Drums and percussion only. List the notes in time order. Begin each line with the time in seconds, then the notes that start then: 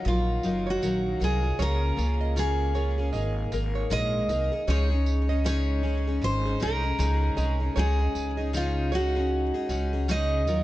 0.06 tambourine
0.43 tambourine
0.83 tambourine
1.22 tambourine
1.59 tambourine
1.99 tambourine
2.37 tambourine
2.75 tambourine
3.13 tambourine
3.52 tambourine
3.91 tambourine
4.29 tambourine
4.68 tambourine
5.06 tambourine
5.46 tambourine
6.23 tambourine
6.60 tambourine
7.00 tambourine
7.38 tambourine
7.77 tambourine
8.15 tambourine
8.54 tambourine
8.92 tambourine
9.69 tambourine
10.09 tambourine
10.48 tambourine